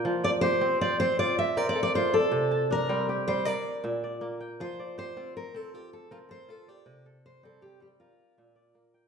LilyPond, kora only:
<<
  \new Staff \with { instrumentName = "Kora" } { \time 12/8 \key f \major \tempo 4. = 106 g''8 d''8 g'4 c''4 f'4 bes'8 a'4 d''8~ | d''8 a''8 d'8 c'8 g'4 bes'4 e''8 d''4 g''8~ | g''8 d''8 g'8 f'4. f'4 bes'8 a'4 d''8~ | d''8 a'4 c'8 g'4 bes'4 e''8 d''4 g''8 | }
  \new Staff \with { instrumentName = "Kora" } { \clef bass \time 12/8 \key f \major f4 r8 c'4 c'4 r8 c'4 f'4 | c4 r8 g4 g8 r4 bes,4 bes4 | f4 r8 c'4 c'4 r8 c'4 f'4 | c4 r8 g4 g8 r4 bes,4 bes4 | }
>>